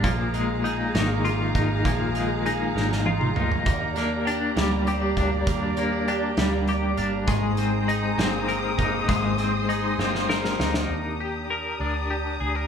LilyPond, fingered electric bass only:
\new Staff \with { instrumentName = "Fingered electric bass" } { \clef bass \time 6/8 \key ees \major \tempo 4. = 66 bes,,4. aes,,4 aes,,8 | bes,,4. aes,,4 d,8 | ees,4. d,4 d,8 | ees,4. d,4 g,,8 |
aes,,4. g,,4 g,,8 | aes,,4. g,,4 d,8 | ees,4. d,4 d,8 | }